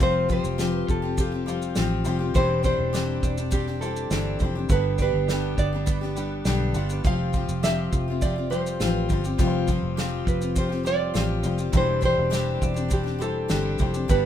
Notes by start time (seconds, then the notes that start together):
Already playing: C4 F4 G4 C5
0.00 F1 F3 G3 C4 F4 G4 C5, kick, shaker
0.29 F3 C4 F4 G4 C5, kick, shaker
0.44 F1, shaker
0.58 F3 C4 F4 G4, snare, shaker
0.70 B4
0.87 F1 F4 A4, kick, shaker
1.02 C4 F4 G4
1.17 F3 C4 F4 G4, kick, shaker
1.32 C4 F4 G4
1.46 F3 G3 C4 F4 G4 C5, shaker
1.62 shaker
1.75 A1 F3 C4 F4 G4, snare, shaker
2.04 F1 F3 G3 C4 F4 G4 C5, shaker
2.19 C4 F4 G4
2.34 E1 E3 G3 C4 D4 E4 G4 C5, kick, shaker
2.63 G3 C4 D4 G4 C5, kick, shaker
2.78 E1
2.93 E3 G3 C4 D4 G4, snare, shaker
3.23 E1 D4, kick, shaker
3.37 C4 D4 G4, shaker
3.51 G3 C4 D4 G4, kick, shaker
3.67 C4 D4 G4, snare
3.80 G3 C4 D4 E4 G4 A4 C5, shaker
3.85 D4 G4
3.96 shaker
4.11 G1 E3 G3 C4 D4 G4, snare, shaker
4.39 F1 G3 C4 D4 E4 C5, kick, shaker
4.44 G4
4.55 C4 D4 G4
4.69 G1 G2 D3 G3 B3 D4 B4, kick, shaker
4.73 G4
4.98 G3 B3 D4, kick, shaker
5.02 D4 G4 B4
5.14 G1
5.29 G2 D3 G3 B3 D4 G4, snare, shaker
5.57 G1 D4 D5, kick, shaker
5.73 G3 B3 D4 G4
5.86 G3 B3 D4 G4, kick, shaker
6.01 G3 B3 D4 G4, snare
6.16 G3 B3 D4 G4 B4, shaker
6.45 B1 G2 D3 G3 B3 D4 G4, snare, shaker
6.74 G1 G3 B3 D4 F4, shaker
6.78 G4
6.90 B3 D4 G4, shaker
6.94 G3
7.03 F1 F3 G3 C4 F4 C5, kick, shaker
7.07 F4 G4 F5
7.33 F3 C4 F4 G4, kick, shaker
7.49 F1, shaker
7.63 F3 C4 F4 G4 E5, snare, shaker
7.92 F1 F4, kick, shaker
8.08 C4 F4 G4
8.22 F3 C4 F4 G4 D5, kick, shaker
8.36 C4 F4 G4
8.50 F3 G3 C4 F4 G4 C5, shaker
8.66 shaker
8.80 A1 F3 C4 F4 G4, snare, shaker
8.91 B4
9.09 G1 F3 G3 C4 F4 G4 C5, kick, shaker
9.24 C4 F4 G4, shaker
9.38 F1 F3 G3 C4 F4 G4 B4, kick, shaker
9.47 C5
9.68 F3 C4 F4, kick, shaker
9.72 G4
9.83 F1
9.97 F3 C4 F4 G4, snare, shaker
10.25 F1 F4 B4, kick, shaker
10.41 C4 F4 G4, shaker
10.56 F3 C4 F4 G4 C5, kick, shaker
10.69 C4 F4 G4, snare
10.84 F3 G3 C4 F4 G4 C5 D5, shaker
11.14 A1 F3 C4 F4 G4, snare, shaker
11.44 F1 F3 G3 C4 F4 G4 C5, shaker
11.58 C4 F4 G4, shaker
11.73 E1 E3 G3 C4 D4 E4 G4 C5, kick, shaker
11.77 C5
12.01 G3 C4 D4 G4, kick, shaker
12.05 C5
12.18 E1
12.30 E3 G3 C4 D4 G4, snare, shaker
12.61 E1 D4, kick, shaker
12.74 C4 D4 G4, shaker
12.88 G3 C4 D4, kick, shaker
12.92 G4
13.03 C4 D4 G4, snare
13.19 G3 C4 D4 E4 G4 A4, shaker
13.23 C5
13.48 G1 E3 G3 C4 D4 G4, snare, shaker
13.65 D4
13.78 F1 G3 C4 D4 E4 G4 C5, kick, shaker
13.94 C4 D4 G4, shaker
14.08 G1 G2 D3 G3 B3 D4 G4 B4, kick, shaker